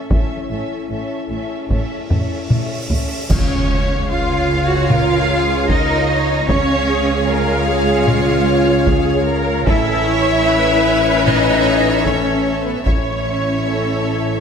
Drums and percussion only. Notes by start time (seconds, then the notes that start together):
0.10 taiko
1.70 taiko
2.10 taiko low-mid
2.50 taiko mid
2.90 taiko low
3.30 concert bass drum, taiko, crash
4.90 taiko mid
5.69 taiko
6.49 taiko
8.08 taiko mid
8.87 taiko
9.66 taiko
11.27 taiko mid
12.06 taiko
12.86 taiko